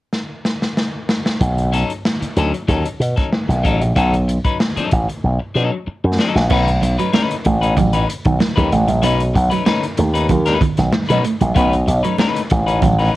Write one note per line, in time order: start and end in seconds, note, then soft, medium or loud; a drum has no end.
0.13 snare soft
0.45 snare medium
0.62 snare medium
0.77 snare medium
1.09 snare loud
1.26 snare medium
1.41 1.82 B1 loud
1.41 kick loud
1.41 closed hi-hat medium
1.58 closed hi-hat soft
1.72 1.90 F#3 medium
1.72 1.91 C#4 medium
1.72 1.91 D#4 medium
1.72 1.91 A4 medium
1.72 closed hi-hat medium
1.90 closed hi-hat soft
2.05 snare loud
2.21 muted clean electric guitar stroke soft
2.21 muted slap bass stroke soft
2.21 closed hi-hat medium
2.36 2.51 D2 medium
2.36 2.55 F#3 medium
2.36 2.53 C#4 medium
2.36 2.53 D#4 medium
2.36 2.53 A4 medium
2.36 closed hi-hat medium
2.54 muted clean electric guitar stroke soft
2.54 closed hi-hat soft
2.68 2.83 D#2 medium
2.68 2.86 F#3 medium
2.68 2.86 C#4 medium
2.68 2.87 D#4 medium
2.68 2.87 A4 medium
2.68 kick medium
2.68 closed hi-hat medium
2.85 closed hi-hat medium
3.00 3.14 B2 medium
3.00 muted clean electric guitar stroke soft
3.00 closed hi-hat medium
3.16 3.30 F#3 soft
3.16 3.30 C#4 soft
3.16 3.30 D#4 soft
3.16 3.29 A4 soft
3.16 kick medium
3.16 snare soft
3.16 closed hi-hat soft
3.33 snare loud
3.48 3.65 B1 medium
3.48 muted clean electric guitar stroke soft
3.48 closed hi-hat soft
3.63 3.81 A1 medium
3.63 3.82 F#3 medium
3.63 3.81 C#4 medium
3.63 3.81 D#4 medium
3.63 3.80 A4 medium
3.63 kick medium
3.63 closed hi-hat medium
3.81 3.94 A#1 medium
3.81 muted clean electric guitar stroke soft
3.81 closed hi-hat medium
3.96 4.37 B1 loud
3.96 4.14 F#3 medium
3.96 4.14 C#4 medium
3.96 4.14 D#4 medium
3.96 4.15 A4 loud
3.96 kick loud
3.96 closed hi-hat medium
4.14 closed hi-hat soft
4.28 muted clean electric guitar stroke soft
4.28 closed hi-hat medium
4.45 4.58 F#3 medium
4.45 4.58 C#4 medium
4.45 4.57 D#4 medium
4.45 4.57 B4 medium
4.45 kick medium
4.45 closed hi-hat soft
4.60 muted clean electric guitar stroke soft
4.60 snare loud
4.77 4.90 F#3 medium
4.77 4.91 C#4 medium
4.77 4.91 D#4 medium
4.77 4.91 A4 medium
4.77 muted slap bass stroke soft
4.77 closed hi-hat soft
4.91 5.06 A1 medium
4.91 muted clean electric guitar stroke soft
4.91 kick medium
4.91 closed hi-hat medium
5.09 muted clean electric guitar stroke soft
5.09 closed hi-hat medium
5.24 5.38 B1 medium
5.40 muted clean electric guitar stroke soft
5.55 5.70 B2 medium
5.55 5.76 F#3 medium
5.55 5.72 C#4 medium
5.55 5.71 D#4 medium
5.55 5.71 A4 medium
5.72 muted clean electric guitar stroke soft
5.87 muted clean electric guitar stroke soft
5.87 muted slap bass stroke soft
6.04 6.16 F#2 medium
6.04 muted clean electric guitar stroke medium
6.19 6.39 F#3 medium
6.19 6.36 C#4 medium
6.19 6.36 D#4 medium
6.19 6.35 A4 medium
6.19 snare medium
6.35 6.48 A#1 medium
6.35 muted clean electric guitar stroke soft
6.35 snare medium
6.50 6.77 B1 loud
6.50 6.68 A3 medium
6.50 6.61 B3 medium
6.50 6.68 C#4 loud
6.50 6.69 D#4 medium
6.50 6.69 B4 medium
6.50 kick loud
6.50 crash medium
6.50 muted conga medium
6.68 closed hi-hat soft
6.82 6.96 B1 medium
6.82 muted clean electric guitar stroke soft
6.82 closed hi-hat medium
6.82 muted conga soft
6.98 7.08 F#3 medium
6.98 7.12 A3 soft
6.98 7.12 C#4 soft
6.98 7.11 D#4 medium
6.98 7.11 B4 medium
6.98 closed hi-hat soft
7.13 7.34 A3 medium
7.13 7.34 C#4 medium
7.13 7.34 D#4 medium
7.13 7.35 B4 medium
7.13 snare loud
7.13 high conga medium
7.31 closed hi-hat medium
7.45 7.72 A1 medium
7.45 7.56 A3 medium
7.45 muted clean electric guitar stroke soft
7.45 kick medium
7.45 closed hi-hat medium
7.61 7.75 A3 medium
7.61 7.75 C#4 medium
7.61 7.74 D#4 medium
7.61 7.74 B4 medium
7.61 closed hi-hat medium
7.77 8.04 A1 medium
7.77 7.88 F#3 medium
7.77 muted clean electric guitar stroke soft
7.77 kick medium
7.77 closed hi-hat medium
7.77 muted conga medium
7.77 low conga medium
7.93 8.07 A3 medium
7.93 8.07 C#4 medium
7.93 8.08 D#4 medium
7.93 8.08 B4 medium
7.93 closed hi-hat medium
8.08 muted clean electric guitar stroke soft
8.08 closed hi-hat medium
8.25 8.38 B1 medium
8.25 8.35 D#3 medium
8.25 muted clean electric guitar stroke soft
8.25 kick loud
8.25 closed hi-hat soft
8.39 muted clean electric guitar stroke soft
8.39 snare loud
8.39 high conga medium
8.56 8.70 D#2 medium
8.56 8.66 F#3 medium
8.56 8.70 A3 medium
8.56 8.70 C#4 medium
8.56 8.71 D#4 loud
8.56 8.71 B4 loud
8.56 kick medium
8.56 closed hi-hat soft
8.71 8.89 A1 medium
8.71 8.83 A3 medium
8.71 muted clean electric guitar stroke soft
8.71 closed hi-hat medium
8.88 9.03 A#1 medium
8.88 muted clean electric guitar stroke soft
8.88 closed hi-hat medium
8.88 high conga medium
9.02 9.30 B1 loud
9.02 9.20 A3 medium
9.02 9.14 B3 medium
9.02 9.21 C#4 medium
9.02 9.21 D#4 loud
9.02 9.21 B4 medium
9.02 closed hi-hat medium
9.02 muted conga medium
9.20 closed hi-hat soft
9.34 9.49 B1 medium
9.34 muted clean electric guitar stroke soft
9.34 kick medium
9.34 closed hi-hat medium
9.34 muted conga soft
9.50 9.61 F#3 medium
9.50 9.64 A3 soft
9.50 9.64 C#4 medium
9.50 9.64 D#4 medium
9.50 9.63 B4 medium
9.50 closed hi-hat soft
9.65 9.84 A3 medium
9.65 9.84 C#4 medium
9.65 9.84 D#4 loud
9.65 9.84 B4 medium
9.65 snare loud
9.65 high conga medium
9.83 closed hi-hat medium
9.97 10.25 D#2 medium
9.97 10.09 A3 medium
9.97 muted clean electric guitar stroke soft
9.97 closed hi-hat medium
10.14 10.27 A3 soft
10.14 10.27 C#4 medium
10.14 10.27 D#4 medium
10.14 10.27 B4 medium
10.14 closed hi-hat medium
10.28 10.56 D#2 medium
10.28 10.41 F#3 medium
10.28 muted clean electric guitar stroke soft
10.28 kick medium
10.28 closed hi-hat medium
10.28 muted conga medium
10.28 low conga medium
10.46 10.59 A3 medium
10.46 10.60 C#4 medium
10.46 10.61 D#4 medium
10.46 10.61 B4 medium
10.46 snare soft
10.46 closed hi-hat medium
10.60 muted clean electric guitar stroke soft
10.60 kick loud
10.60 closed hi-hat medium
10.60 low conga medium
10.77 10.91 B1 medium
10.77 10.88 D#3 medium
10.77 muted clean electric guitar stroke soft
10.77 snare soft
10.77 closed hi-hat medium
10.93 muted clean electric guitar stroke soft
10.93 snare loud
10.93 high conga medium
11.09 11.22 B2 loud
11.09 11.19 F#3 medium
11.09 11.22 A3 medium
11.09 11.23 C#4 medium
11.09 11.23 D#4 medium
11.09 11.24 B4 medium
11.09 closed hi-hat soft
11.24 11.35 A3 medium
11.24 muted clean electric guitar stroke soft
11.24 closed hi-hat medium
11.41 11.54 A#1 medium
11.41 muted clean electric guitar stroke soft
11.41 closed hi-hat soft
11.41 high conga medium
11.55 11.83 B1 loud
11.55 11.73 A3 medium
11.55 11.67 B3 loud
11.55 11.74 C#4 medium
11.55 11.74 D#4 medium
11.55 11.74 B4 medium
11.55 kick loud
11.55 closed hi-hat medium
11.55 muted conga medium
11.73 closed hi-hat soft
11.87 12.02 B1 medium
11.87 muted clean electric guitar stroke soft
11.87 closed hi-hat medium
11.87 muted conga soft
12.03 12.14 F#3 medium
12.03 12.17 A3 medium
12.03 12.17 C#4 medium
12.03 12.16 D#4 medium
12.03 12.16 B4 medium
12.03 closed hi-hat soft
12.18 12.39 A3 medium
12.18 12.40 C#4 medium
12.18 12.40 D#4 medium
12.18 12.40 B4 medium
12.18 snare loud
12.18 high conga medium
12.36 closed hi-hat medium
12.50 12.78 A1 medium
12.50 12.61 A3 medium
12.50 muted clean electric guitar stroke soft
12.50 kick medium
12.50 closed hi-hat medium
12.66 12.80 A3 soft
12.66 12.80 C#4 medium
12.66 12.79 D#4 medium
12.66 12.79 B4 medium
12.66 closed hi-hat medium
12.82 13.09 A1 medium
12.82 12.93 F#3 medium
12.82 muted clean electric guitar stroke soft
12.82 kick medium
12.82 closed hi-hat medium
12.82 muted conga soft
12.82 low conga medium
12.98 13.13 A3 medium
12.98 13.13 C#4 medium
12.98 13.14 D#4 medium
12.98 13.14 B4 medium
12.98 snare soft
12.98 closed hi-hat medium